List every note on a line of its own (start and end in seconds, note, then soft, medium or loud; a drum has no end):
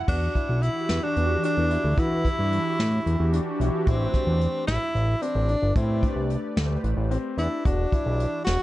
0.08 0.29 E2 loud
0.08 0.64 D4 medium
0.08 0.31 F#4 medium
0.08 kick loud
0.08 crash medium
0.35 0.82 E4 medium
0.35 kick medium
0.35 closed hi-hat medium
0.49 0.69 B1 medium
0.62 1.15 E3 medium
0.62 1.16 D4 medium
0.62 1.05 E4 loud
0.62 1.16 F#4 medium
0.62 1.39 G4 medium
0.62 closed hi-hat medium
0.89 1.00 E2 medium
0.89 snare medium
0.89 closed hi-hat medium
1.04 1.44 D4 medium
1.16 1.37 E2 medium
1.16 1.35 E3 medium
1.16 1.35 D4 medium
1.16 1.36 F#4 medium
1.16 1.36 A4 medium
1.16 closed hi-hat medium
1.43 1.67 D4 medium
1.43 2.01 D4 medium
1.43 closed hi-hat medium
1.57 1.78 E2 medium
1.71 1.94 E4 medium
1.71 closed hi-hat medium
1.84 1.94 D2 medium
1.98 2.28 E3 loud
1.98 3.61 E4 medium
1.98 2.21 F#4 medium
1.98 kick loud
1.98 closed hi-hat medium
2.25 2.63 E3 medium
2.25 2.63 D4 medium
2.25 2.72 E4 medium
2.25 2.63 F#4 medium
2.25 2.63 G4 medium
2.25 kick medium
2.25 closed hi-hat medium
2.39 2.59 G2 medium
2.52 closed hi-hat medium
2.79 3.00 A2 medium
2.79 snare loud
2.79 closed hi-hat medium
3.06 3.16 E2 medium
3.06 3.82 E3 medium
3.06 3.82 D4 medium
3.06 3.82 F#4 medium
3.06 3.83 G4 medium
3.06 closed hi-hat medium
3.20 3.40 E2 loud
3.33 3.56 D4 medium
3.33 closed hi-hat medium
3.60 3.70 B1 medium
3.60 3.83 E4 medium
3.60 closed hi-hat medium
3.87 4.08 A1 medium
3.87 4.06 A3 medium
3.87 4.65 C4 medium
3.87 4.11 E4 medium
3.87 4.06 G4 medium
3.87 4.06 B4 medium
3.87 4.07 C5 medium
3.87 kick loud
3.87 closed hi-hat medium
4.14 4.61 D4 medium
4.14 kick medium
4.14 snare soft
4.14 closed hi-hat medium
4.27 4.47 E2 medium
4.41 closed hi-hat medium
4.67 4.78 A1 medium
4.67 5.24 E4 loud
4.67 snare loud
4.67 closed hi-hat medium
4.95 5.15 A1 medium
4.95 closed hi-hat soft
5.22 5.46 C4 medium
5.22 5.76 D4 medium
5.22 closed hi-hat medium
5.35 5.56 A1 loud
5.49 5.73 D4 medium
5.49 closed hi-hat medium
5.62 5.73 G1 medium
5.76 6.07 A2 loud
5.76 6.14 A3 medium
5.76 6.27 C4 medium
5.76 6.00 E4 medium
5.76 6.14 G4 medium
5.76 6.14 B4 medium
5.76 6.14 D5 medium
5.76 kick loud
5.76 closed hi-hat medium
6.03 6.50 D4 medium
6.03 kick medium
6.03 closed hi-hat medium
6.16 6.37 C2 medium
6.30 closed hi-hat medium
6.56 6.77 D2 medium
6.56 6.76 A3 medium
6.56 6.76 G4 medium
6.56 6.76 B4 medium
6.56 6.76 C5 medium
6.56 snare loud
6.56 closed hi-hat medium
6.84 6.94 A1 medium
6.84 closed hi-hat medium
6.97 7.18 A1 medium
7.11 7.35 C4 medium
7.11 closed hi-hat medium
7.38 7.48 E2 medium
7.38 7.62 D4 medium
7.38 7.67 E4 medium
7.38 closed hi-hat medium
7.65 7.86 E1 loud
7.65 8.44 D4 medium
7.65 7.89 F#4 medium
7.65 kick loud
7.65 closed hi-hat medium
7.92 8.12 E3 medium
7.92 8.12 D4 medium
7.92 8.40 E4 medium
7.92 8.12 F#4 medium
7.92 8.12 G4 medium
7.92 kick medium
7.92 closed hi-hat medium
8.06 8.27 B1 medium
8.20 closed hi-hat medium
8.45 8.57 E1 medium
8.45 8.63 F#4 medium
8.45 snare loud
8.45 closed hi-hat medium